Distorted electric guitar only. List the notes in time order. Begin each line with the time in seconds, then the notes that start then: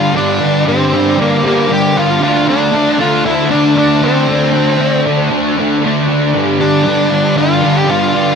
Already playing: G2 D3 G3 D4
0.14 G2 D3 G3
0.40 D3 G3
0.66 G2 D3 G3
0.92 G2 D3 G3
1.18 G2 D3 G3
1.43 G2 D3 G3
1.69 G2 D3 G3
1.94 D3 G3
2.20 D3 A3 D4
2.46 A3 D4
2.72 D3 A3 D4
2.98 D3 A3 D4
3.24 D3 A3 D4
3.51 D3 A3 D4
3.76 D3 A3 D4
4.02 A3 D4
4.28 D3 A3 D4
4.53 A3 D4
4.78 D3 A3 D4
5.06 D3 A3 D4
5.30 D3 A3 D4
5.57 D3 A3 D4
5.83 D3 A3 D4
6.09 A3 D4
6.34 G2 D3 G3
6.59 D3 G3
6.85 G2 D3 G3
7.11 G2 D3 G3
7.36 G2 D3 G3
7.62 G2 D3 G3
7.88 G2 D3 G3
8.14 D3 G3